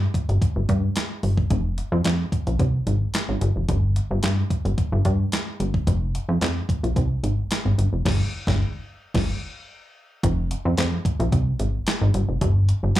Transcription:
0.14 kick medium
0.14 closed hi-hat medium
0.29 0.39 G1 medium
0.29 closed hi-hat soft
0.42 kick medium
0.42 closed hi-hat medium
0.56 0.66 G1 medium
0.69 0.90 G2 loud
0.69 kick medium
0.69 closed hi-hat medium
0.96 snare loud
0.96 clap medium
0.96 closed hi-hat medium
1.23 1.44 G1 medium
1.23 open hi-hat medium
1.37 kick loud
1.50 1.83 F1 loud
1.50 kick loud
1.50 closed hi-hat medium
1.78 closed hi-hat medium
1.92 2.02 F2 loud
2.04 2.26 F2 medium
2.04 snare loud
2.04 clap medium
2.04 closed hi-hat medium
2.32 kick medium
2.32 closed hi-hat medium
2.47 2.57 A#1 medium
2.47 closed hi-hat medium
2.59 2.80 C2 medium
2.59 kick medium
2.59 closed hi-hat medium
2.87 3.08 G#1 medium
2.87 closed hi-hat medium
3.14 snare loud
3.14 clap loud
3.14 closed hi-hat medium
3.29 3.39 G#1 medium
3.41 3.52 G1 loud
3.41 closed hi-hat medium
3.56 3.66 F1 medium
3.69 4.01 G1 loud
3.69 kick loud
3.69 closed hi-hat medium
3.96 closed hi-hat medium
4.11 4.20 G1 loud
4.23 4.44 G2 medium
4.23 snare loud
4.23 clap loud
4.23 closed hi-hat loud
4.50 kick medium
4.50 closed hi-hat medium
4.65 4.75 G1 medium
4.65 closed hi-hat soft
4.78 kick medium
4.78 closed hi-hat medium
4.92 5.02 G1 loud
5.05 5.26 G2 loud
5.05 kick medium
5.05 closed hi-hat medium
5.32 snare loud
5.32 clap medium
5.32 closed hi-hat medium
5.60 5.81 G1 medium
5.60 closed hi-hat medium
5.74 kick medium
5.87 6.19 F1 loud
5.87 kick loud
5.87 closed hi-hat medium
6.15 closed hi-hat medium
6.29 6.38 F2 medium
6.41 6.62 F2 loud
6.41 snare loud
6.41 clap loud
6.41 closed hi-hat loud
6.69 kick loud
6.69 closed hi-hat medium
6.83 6.93 A#1 medium
6.83 closed hi-hat medium
6.96 7.17 C2 loud
6.96 kick medium
6.96 closed hi-hat medium
7.23 7.44 G#1 medium
7.23 closed hi-hat medium
7.51 snare loud
7.51 clap medium
7.51 closed hi-hat medium
7.65 7.75 G#1 medium
7.78 7.89 G1 medium
7.78 closed hi-hat medium
7.93 8.02 F1 medium
8.05 8.24 G1 loud
8.05 kick loud
8.05 snare loud
8.05 crash medium
8.47 8.65 G1 loud
8.47 kick medium
8.47 snare loud
9.14 9.33 G1 loud
9.14 kick medium
9.14 snare medium
9.14 crash medium
10.23 10.55 F1 loud
10.23 kick loud
10.23 closed hi-hat loud
10.51 closed hi-hat medium
10.65 10.75 F2 loud
10.77 10.99 F2 loud
10.77 snare loud
10.77 clap medium
10.77 closed hi-hat loud
11.05 kick loud
11.05 closed hi-hat medium
11.20 11.29 A#1 loud
11.20 closed hi-hat medium
11.32 11.53 C2 medium
11.32 kick medium
11.32 closed hi-hat medium
11.59 11.80 G#1 medium
11.59 closed hi-hat medium
11.87 snare loud
11.87 clap medium
11.87 closed hi-hat medium
12.01 12.11 G#1 loud
12.14 12.25 G1 loud
12.14 closed hi-hat medium
12.28 12.38 F1 medium
12.41 12.73 G1 loud
12.41 kick loud
12.41 closed hi-hat loud
12.69 closed hi-hat medium
12.83 12.93 G1 loud
12.95 13.00 G2 medium
12.95 snare loud
12.95 closed hi-hat medium

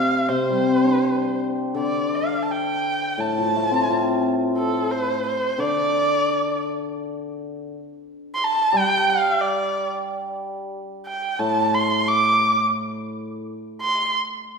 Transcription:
0.00 0.28 C3 medium
0.00 0.30 F5 medium
0.28 1.76 C3 medium
0.28 1.39 C5 medium
0.50 1.96 G3 soft
0.67 2.13 C4 soft
0.84 2.31 D4 soft
1.04 2.49 G4 soft
1.75 3.87 D3 soft
1.79 2.17 D5 medium
2.15 2.44 F5 medium
2.43 2.52 A5 soft
2.51 3.22 G5 medium
3.18 5.25 A2 soft
3.18 4.23 A5 medium
3.38 4.75 F3 soft
3.56 4.92 A3 soft
3.71 5.08 C4 soft
3.88 5.25 F4 soft
4.58 4.93 A4 medium
4.91 5.26 C5 medium
5.27 5.61 C5 medium
5.58 7.71 D3 medium
5.58 6.66 D5 medium
8.35 8.46 C6 medium
8.44 8.79 A5 medium
8.73 10.73 G3 medium
8.78 9.11 G5 loud
9.09 9.43 F5 medium
9.41 9.91 D5 medium
11.06 11.41 G5 medium
11.39 13.47 A2 medium
11.39 11.76 A5 medium
11.74 12.10 C6 medium
12.08 12.60 D6 medium
13.81 14.13 C6 medium

